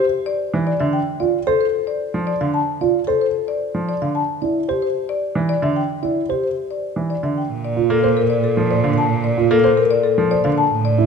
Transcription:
0.00 0.17 C5 medium
0.26 0.44 D5 medium
0.54 0.71 E3 medium
0.67 0.84 D5 medium
0.80 0.98 D3 medium
0.80 0.97 E5 medium
0.93 1.11 G5 medium
1.20 1.38 F4 soft
1.20 1.38 D5 medium
1.47 1.65 A4 medium
1.47 1.65 C5 medium
1.61 1.78 C5 soft
1.87 2.05 D5 medium
2.14 2.32 F3 soft
2.27 2.45 D5 medium
2.41 2.58 D3 medium
2.41 2.58 F5 soft
2.54 2.72 A5 medium
2.81 2.99 F4 soft
2.81 2.99 D5 soft
3.07 3.25 A4 medium
3.07 3.25 C5 medium
3.21 3.39 C5 soft
3.48 3.66 D5 medium
3.75 3.92 F3 soft
3.89 4.06 D5 medium
4.02 4.19 D3 soft
4.02 4.19 F5 soft
4.15 4.32 A5 soft
4.42 4.59 E4 soft
4.42 4.59 D5 soft
4.69 4.86 G4 medium
4.69 4.86 C5 medium
4.82 5.00 C5 soft
5.09 5.26 D5 medium
5.35 5.53 E3 soft
5.49 5.66 D5 medium
5.62 5.80 D3 medium
5.62 5.80 E5 medium
5.76 5.93 G5 medium
6.02 6.20 E4 soft
6.02 6.20 D5 soft
6.29 6.47 G4 medium
6.29 6.47 C5 medium
6.44 6.60 C5 soft
6.71 6.87 D5 soft
6.96 7.14 E3 soft
7.10 7.27 D5 soft
7.23 7.41 D3 soft
7.23 7.41 E5 soft
7.38 7.54 G5 soft
7.50 10.57 A#2 medium
7.65 7.81 D5 soft
7.77 7.94 F4 soft
7.90 8.07 A#3 medium
7.90 8.08 A4 medium
8.03 8.21 C5 medium
8.03 8.21 C5 soft
8.17 8.34 A#4 soft
8.30 8.48 D5 medium
8.44 8.61 A4 soft
8.57 8.74 F3 soft
8.70 8.88 C5 soft
8.70 8.88 D5 medium
8.84 9.01 D3 medium
8.84 9.01 F5 medium
8.98 9.15 A5 medium
9.24 9.41 D5 medium
9.37 9.55 F4 medium
9.51 9.68 A#3 medium
9.51 9.68 A4 medium
9.64 9.81 C5 medium
9.64 9.82 C5 medium
9.77 9.95 A#4 medium
9.91 10.08 D5 medium
10.04 10.21 A4 medium
10.18 10.35 F3 medium
10.31 10.49 C5 medium
10.31 10.49 D5 medium
10.44 10.62 D3 medium
10.44 10.62 F5 medium
10.58 10.75 A5 medium
10.72 11.06 A2 medium
10.85 11.02 D5 medium
10.98 11.06 E4 medium

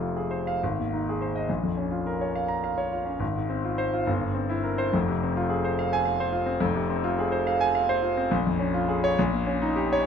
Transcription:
0.00 0.58 F1 soft
0.00 0.59 F2 medium
0.00 0.64 C3 soft
0.00 0.25 F4 soft
0.17 0.41 G#4 soft
0.31 0.56 C5 soft
0.47 0.62 F5 medium
0.63 1.47 G#1 medium
0.79 1.02 D#2 soft
0.93 1.15 D#4 soft
1.09 1.30 G#4 medium
1.22 1.44 C5 soft
1.36 1.49 D#5 medium
1.49 3.18 A#1 medium
1.63 1.87 F2 soft
1.77 2.01 C#4 soft
1.91 2.15 F4 soft
2.07 2.30 A#4 medium
2.21 2.45 C#5 soft
2.35 2.59 F5 medium
2.48 2.72 A#5 medium
2.64 2.87 F5 medium
2.78 3.01 C#5 medium
2.92 3.16 F4 soft
3.05 3.21 C#4 soft
3.20 4.04 G#1 medium
3.35 3.59 G#2 soft
3.49 3.73 C4 soft
3.65 3.88 F4 soft
3.78 4.02 C5 medium
3.94 4.08 F4 medium
4.07 4.91 G1 medium
4.21 4.44 G2 soft
4.35 4.58 C4 medium
4.50 4.73 E4 medium
4.64 4.88 A#4 medium
4.78 4.94 C5 medium
4.93 6.57 F1 medium
4.93 6.58 F2 medium
5.09 5.31 C3 medium
5.23 5.46 C4 medium
5.37 5.59 F4 medium
5.49 5.72 G#4 medium
5.65 5.87 C5 medium
5.79 6.01 F5 medium
5.93 6.15 G#5 medium
6.05 6.28 F5 medium
6.20 6.42 C5 medium
6.32 6.55 F4 medium
6.46 6.61 C4 medium
6.60 8.27 F1 medium
6.60 8.28 F2 medium
6.76 6.98 C3 medium
6.90 7.13 C4 medium
7.04 7.27 F4 medium
7.18 7.42 G#4 medium
7.32 7.56 C5 medium
7.47 7.70 F5 medium
7.61 7.84 G#5 medium
7.75 7.98 F5 medium
7.89 8.12 C5 medium
8.02 8.26 F4 medium
8.17 8.32 C4 medium
8.31 9.15 A#1 medium
8.47 8.70 F2 medium
8.59 8.83 C#4 medium
8.74 8.97 F4 medium
8.88 9.12 G#4 medium
9.04 9.18 C#5 medium
9.19 10.05 A#1 medium
9.33 9.56 A#2 medium
9.47 9.71 C#4 medium
9.62 9.86 D#4 medium
9.76 10.01 G4 medium
9.93 10.06 C#5 medium

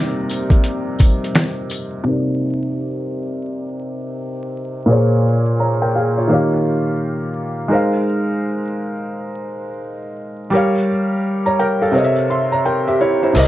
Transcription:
0.00 2.01 C3 medium
0.00 2.01 F3 medium
0.00 2.01 G3 medium
0.00 2.01 A#3 medium
0.00 2.01 C4 medium
0.00 2.02 D#4 medium
0.00 2.01 G4 medium
0.00 2.03 A#4 medium
0.00 2.04 D5 medium
0.29 closed hi-hat medium
0.29 tambourine medium
0.50 kick medium
0.50 closed hi-hat soft
0.64 closed hi-hat medium
0.99 kick medium
0.99 closed hi-hat medium
0.99 tambourine medium
1.24 closed hi-hat soft
1.35 finger snap medium
1.35 snare loud
1.35 closed hi-hat medium
1.70 closed hi-hat medium
1.70 tambourine medium
2.04 4.83 C3 medium
2.04 4.84 C4 medium
2.04 4.84 D#4 medium
2.08 4.85 A#4 medium
2.08 4.86 D5 medium
4.86 6.25 A#2 medium
4.86 6.26 A#3 medium
4.86 5.58 G#4 medium
4.91 5.58 C5 medium
4.91 5.59 C#5 medium
5.60 5.80 C#5 soft
5.60 5.80 A#5 medium
5.82 5.94 A#4 medium
5.82 5.94 G5 medium
5.95 6.16 G#4 medium
5.95 6.15 F5 medium
6.17 6.50 F4 soft
6.17 6.30 C#5 medium
6.27 7.66 D#3 medium
6.27 7.67 A#3 medium
6.27 7.68 G4 medium
6.32 7.69 C#5 medium
6.32 7.70 F5 medium
7.68 10.47 G#3 medium
7.68 10.48 D#4 medium
7.68 10.49 A#4 medium
7.73 10.50 C5 medium
7.73 10.51 F5 medium
10.50 11.90 G3 medium
10.50 11.90 G4 medium
10.50 10.87 A#4 medium
10.55 10.88 C#5 medium
10.55 10.89 F5 medium
11.46 11.58 C#5 soft
11.46 11.58 A#5 medium
11.59 11.80 A#4 medium
11.59 11.80 G5 medium
11.82 12.15 A4 medium
11.82 12.14 F5 medium
11.91 13.31 C3 medium
11.91 13.32 C4 medium
11.91 12.29 A#4 medium
11.96 12.29 C#5 medium
11.96 12.04 D#5 medium
12.04 12.29 E5 medium
12.30 12.51 E5 medium
12.30 12.50 C6 medium
12.52 12.64 C#5 soft
12.52 12.64 A#5 medium
12.65 12.86 A#4 soft
12.65 12.86 G5 medium
12.87 13.00 G4 medium
12.87 12.99 E5 medium
13.01 13.21 E4 soft
13.01 13.21 C#5 medium
13.23 13.48 E4 soft
13.23 13.48 C5 medium
13.33 13.48 C2 medium
13.33 13.48 C3 medium
13.33 13.48 C4 medium
13.33 13.48 A#4 medium
13.33 closed hi-hat medium
13.33 crash medium
13.38 13.48 D5 medium
13.38 13.48 D#5 medium

